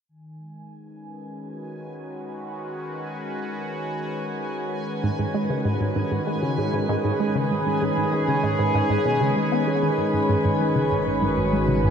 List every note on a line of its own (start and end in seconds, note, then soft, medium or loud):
0.09 11.90 D#3 medium
0.09 10.00 G#5 medium
0.36 11.90 G#3 medium
0.77 11.90 B4 medium
0.84 11.90 C#4 medium
1.37 6.71 F#4 medium
5.04 5.10 G#2 medium
5.19 5.26 G#2 medium
5.34 5.49 G#3 medium
5.50 5.65 C#3 medium
5.65 5.77 G#2 medium
5.81 5.92 G#2 medium
5.96 6.03 G#2 medium
6.12 6.19 G#2 medium
6.27 6.42 G#3 medium
6.43 6.57 C#3 medium
6.53 11.90 G#4 medium
6.58 6.70 G#2 medium
6.74 6.85 G#2 medium
6.89 6.96 G#2 medium
7.05 7.12 G#2 medium
7.20 7.35 G#3 medium
7.35 7.50 C#3 medium
7.51 7.62 G#2 medium
7.66 7.78 G#2 medium
7.82 7.89 G#2 loud
7.97 8.04 G#2 medium
8.13 8.27 G#3 medium
8.28 8.43 C#3 medium
8.44 8.55 G#2 medium
8.59 8.71 G#2 medium
8.75 8.82 G#2 medium
8.90 8.97 G#2 medium
9.05 9.20 B2 medium
9.21 9.32 C#3 loud
9.36 9.48 G#3 medium
9.52 9.64 B3 medium
9.67 9.74 G#3 medium
9.83 9.90 D#3 medium
9.98 10.10 G#2 medium
9.98 11.90 B5 medium
10.14 10.25 G#2 medium
10.29 10.36 G#2 loud
10.45 10.52 G#2 medium
10.60 10.75 G#3 medium
10.76 10.90 C#3 medium
10.91 11.03 G#2 medium
11.07 11.18 G#2 medium
11.20 11.29 G#2 loud
11.20 11.90 F#4 medium
11.37 11.44 G#2 medium
11.53 11.68 G#3 medium
11.68 11.83 C#3 medium
11.84 11.90 G#2 medium